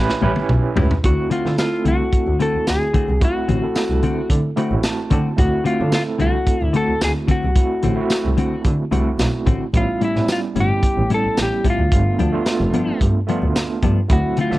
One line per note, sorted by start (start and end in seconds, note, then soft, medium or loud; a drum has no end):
0.00 0.20 C#4 loud
0.00 0.20 E4 medium
0.00 0.21 G4 medium
0.00 0.21 B4 loud
0.09 snare medium
0.21 0.31 A1 medium
0.21 0.39 A2 medium
0.21 0.39 G3 medium
0.21 0.39 C#4 loud
0.21 0.97 C#4 medium
0.21 0.40 E4 loud
0.21 0.97 E4 medium
0.21 0.97 G4 medium
0.21 0.98 B4 medium
0.36 high tom medium
0.49 0.58 B1 medium
0.49 mid tom medium
0.75 0.85 C#2 medium
0.75 0.93 A2 loud
0.75 0.93 G3 medium
0.75 0.94 C#4 loud
0.75 0.94 E4 loud
0.75 floor tom loud
0.91 floor tom loud
1.03 1.13 D2 medium
1.03 1.41 A3 medium
1.03 1.42 C4 medium
1.03 1.42 E4 medium
1.03 1.42 F#4 medium
1.03 1.30 F#4 medium
1.03 kick loud
1.03 closed hi-hat medium
1.30 1.47 D3 medium
1.30 1.48 A3 medium
1.30 1.48 C4 medium
1.30 1.58 F4 medium
1.30 1.48 F#4 medium
1.30 closed hi-hat medium
1.45 1.53 D3 medium
1.45 2.31 A3 medium
1.45 2.32 C4 medium
1.45 2.32 E4 medium
1.45 2.32 A4 medium
1.45 snare soft
1.58 1.84 F4 medium
1.58 snare loud
1.58 closed hi-hat medium
1.58 tambourine loud
1.85 1.94 C2 medium
1.85 2.02 D3 medium
1.85 2.02 A3 medium
1.85 2.03 C4 medium
1.85 2.03 F#4 medium
1.85 2.37 F#4 medium
1.85 closed hi-hat medium
2.12 kick medium
2.12 closed hi-hat medium
2.27 2.35 D2 medium
2.39 2.56 D3 medium
2.39 3.14 A3 medium
2.39 2.57 A3 medium
2.39 3.14 C4 medium
2.39 2.57 C4 medium
2.39 3.15 E4 medium
2.39 2.57 F#4 medium
2.39 3.15 F#4 medium
2.39 2.66 A4 medium
2.39 closed hi-hat medium
2.54 2.60 D2 soft
2.67 2.76 D2 medium
2.67 3.24 G#4 medium
2.67 snare medium
2.67 closed hi-hat medium
2.67 tambourine medium
2.94 3.11 D3 medium
2.94 3.11 A3 medium
2.94 3.11 C4 medium
2.94 3.12 F#4 medium
2.94 kick medium
2.94 closed hi-hat medium
3.09 3.17 C2 medium
3.20 3.58 A3 medium
3.20 3.59 C4 medium
3.20 3.59 E4 medium
3.20 3.59 F#4 medium
3.20 kick loud
3.20 closed hi-hat medium
3.25 4.28 F#4 medium
3.48 3.57 A1 medium
3.48 3.65 D3 medium
3.48 3.65 A3 medium
3.48 3.66 C4 medium
3.48 3.66 F#4 medium
3.48 closed hi-hat medium
3.62 4.49 A3 medium
3.62 4.49 C4 medium
3.62 4.49 E4 medium
3.62 4.50 A4 medium
3.75 snare medium
3.75 closed hi-hat medium
3.75 tambourine medium
3.90 3.98 C2 medium
4.03 4.20 D3 medium
4.03 4.20 A3 medium
4.03 4.20 C4 medium
4.03 4.20 F#4 medium
4.03 closed hi-hat medium
4.30 4.38 D3 medium
4.30 kick medium
4.30 closed hi-hat medium
4.56 4.74 D3 medium
4.56 5.31 A3 medium
4.56 4.74 A3 medium
4.56 5.31 C4 medium
4.56 4.74 C4 medium
4.56 5.32 E4 medium
4.56 5.32 F#4 medium
4.56 4.75 F#4 medium
4.56 closed hi-hat medium
4.72 4.80 A1 medium
4.83 5.35 A5 medium
4.83 snare loud
4.83 closed hi-hat medium
4.83 tambourine loud
5.10 5.28 D3 medium
5.10 5.19 D3 loud
5.10 5.28 A3 medium
5.10 5.28 C4 loud
5.10 5.29 F#4 loud
5.10 kick medium
5.10 closed hi-hat medium
5.36 5.46 D2 loud
5.36 5.75 A3 medium
5.36 5.75 C4 medium
5.36 5.76 E4 medium
5.36 5.76 F#4 medium
5.36 5.64 F#4 medium
5.36 kick loud
5.36 closed hi-hat medium
5.64 5.82 D3 medium
5.64 5.82 A3 medium
5.64 5.82 C4 medium
5.64 5.92 F4 medium
5.64 5.83 F#4 medium
5.64 closed hi-hat medium
5.79 5.88 D3 medium
5.79 6.66 A3 medium
5.79 6.66 C4 medium
5.79 6.67 E4 medium
5.79 6.67 A4 medium
5.92 6.02 F4 medium
5.92 snare medium
5.92 closed hi-hat medium
5.92 tambourine loud
6.18 6.28 C2 medium
6.18 6.36 D3 medium
6.18 6.37 A3 medium
6.18 6.37 C4 medium
6.18 6.37 F#4 medium
6.18 6.66 F#4 medium
6.18 closed hi-hat medium
6.47 kick medium
6.47 closed hi-hat medium
6.62 6.70 D2 medium
6.66 6.77 E4 medium
6.73 6.91 D3 medium
6.73 7.49 A3 medium
6.73 6.91 A3 medium
6.73 7.49 C4 medium
6.73 6.92 C4 medium
6.73 7.49 E4 medium
6.73 6.92 F#4 medium
6.73 7.49 F#4 medium
6.73 7.04 A4 medium
6.73 closed hi-hat medium
6.89 6.94 D2 soft
7.01 7.10 D2 medium
7.01 7.11 G#4 medium
7.01 snare loud
7.01 closed hi-hat medium
7.01 tambourine loud
7.28 7.45 D3 medium
7.28 7.46 A3 medium
7.28 7.46 C4 medium
7.28 7.46 F#4 medium
7.28 8.62 F#4 medium
7.28 kick medium
7.28 closed hi-hat medium
7.44 7.52 C2 medium
7.55 7.93 A3 medium
7.55 7.94 C4 medium
7.55 7.94 E4 medium
7.55 7.94 F#4 medium
7.55 kick loud
7.55 closed hi-hat medium
7.83 7.92 A1 medium
7.83 8.00 D3 medium
7.83 8.00 A3 medium
7.83 8.00 C4 medium
7.83 8.01 F#4 medium
7.83 closed hi-hat medium
7.96 8.83 A3 medium
7.96 8.83 C4 medium
7.96 8.83 E4 medium
7.96 8.84 F#4 medium
8.10 snare medium
8.10 closed hi-hat medium
8.10 tambourine loud
8.25 8.33 C2 medium
8.37 8.54 D3 medium
8.37 8.55 A3 medium
8.37 8.55 C4 medium
8.37 8.55 F#4 medium
8.37 closed hi-hat medium
8.64 8.73 D3 medium
8.64 kick medium
8.64 closed hi-hat medium
8.91 9.00 C2 medium
8.91 9.09 D3 medium
8.91 9.66 A3 medium
8.91 9.09 A3 medium
8.91 9.66 C4 medium
8.91 9.09 C4 medium
8.91 9.67 E4 medium
8.91 9.67 F#4 medium
8.91 9.09 F#4 medium
8.91 closed hi-hat medium
9.19 9.27 B1 medium
9.19 snare loud
9.19 closed hi-hat medium
9.19 tambourine loud
9.46 9.55 A1 medium
9.46 9.63 D3 medium
9.46 9.64 A3 medium
9.46 9.64 C4 medium
9.46 9.64 F#4 medium
9.46 kick medium
9.46 closed hi-hat medium
9.73 9.82 A1 loud
9.73 10.11 G3 medium
9.73 10.11 B3 medium
9.73 10.12 C#4 medium
9.73 10.12 E4 medium
9.73 10.04 F4 medium
9.73 kick loud
9.73 closed hi-hat medium
10.01 10.18 A2 medium
10.01 10.18 G3 medium
10.01 10.18 C#4 medium
10.01 10.19 E4 medium
10.01 10.31 E4 medium
10.01 closed hi-hat medium
10.15 10.23 A2 medium
10.15 11.01 G3 medium
10.15 11.02 B3 medium
10.15 11.02 C#4 medium
10.15 11.02 E4 medium
10.15 snare soft
10.28 10.39 F4 medium
10.28 snare medium
10.28 closed hi-hat medium
10.28 tambourine loud
10.55 10.64 G1 medium
10.55 10.72 A2 medium
10.55 10.72 G3 medium
10.55 10.73 C#4 medium
10.55 10.73 E4 medium
10.55 closed hi-hat medium
10.60 11.14 G4 medium
10.83 kick medium
10.83 closed hi-hat medium
10.98 11.06 A1 medium
11.09 11.27 A2 medium
11.09 11.84 G3 medium
11.09 11.27 G3 medium
11.09 11.84 B3 medium
11.09 11.85 C#4 medium
11.09 11.27 C#4 medium
11.09 11.85 E4 medium
11.09 11.27 E4 medium
11.09 closed hi-hat medium
11.14 11.38 A4 medium
11.26 11.31 A1 soft
11.37 11.46 A1 medium
11.37 snare loud
11.37 closed hi-hat medium
11.37 tambourine loud
11.42 11.68 G4 medium
11.64 11.81 A2 medium
11.64 11.81 G3 medium
11.64 11.82 C#4 medium
11.64 11.82 E4 medium
11.64 kick medium
11.64 closed hi-hat medium
11.70 12.99 F4 medium
11.79 11.87 D2 medium
11.91 12.00 G1 loud
11.91 12.29 A3 medium
11.91 12.29 B3 medium
11.91 12.29 D4 medium
11.91 12.30 F4 medium
11.91 kick loud
11.91 closed hi-hat medium
12.19 12.28 D2 medium
12.19 12.36 G2 medium
12.19 12.36 F3 medium
12.19 12.36 B3 medium
12.19 12.36 D4 medium
12.19 closed hi-hat medium
12.32 13.19 A3 medium
12.32 13.19 B3 medium
12.32 13.20 D4 medium
12.32 13.20 F4 medium
12.46 snare loud
12.46 closed hi-hat medium
12.46 tambourine medium
12.61 12.69 F1 medium
12.73 12.90 G2 medium
12.73 12.90 F3 medium
12.73 12.90 B3 medium
12.73 12.91 D4 medium
12.73 closed hi-hat medium
13.01 13.09 G2 medium
13.01 kick medium
13.01 closed hi-hat medium
13.27 13.45 G2 medium
13.27 13.45 F3 medium
13.27 14.02 A3 medium
13.27 14.02 B3 medium
13.27 13.45 B3 medium
13.27 14.02 D4 medium
13.27 13.46 D4 medium
13.27 14.03 F4 medium
13.27 closed hi-hat medium
13.43 13.51 D2 medium
13.56 snare loud
13.56 closed hi-hat medium
13.56 tambourine loud
13.82 13.91 G2 loud
13.82 13.99 G2 medium
13.82 13.99 F3 medium
13.82 14.00 B3 medium
13.82 14.00 D4 medium
13.82 kick medium
13.82 closed hi-hat medium
14.08 14.18 D2 loud
14.08 14.46 F#3 medium
14.08 14.46 A3 medium
14.08 14.47 C4 medium
14.08 14.47 E4 medium
14.08 kick loud
14.08 closed hi-hat medium
14.13 14.39 F#4 medium
14.37 14.54 D3 medium
14.37 14.54 A3 medium
14.37 14.54 C4 medium
14.37 14.55 F#4 medium
14.37 closed hi-hat medium
14.41 14.59 F4 medium
14.50 14.59 D3 medium
14.50 14.59 F#3 medium
14.50 14.59 A3 medium
14.50 14.59 C4 medium
14.50 14.59 E5 medium
14.50 snare soft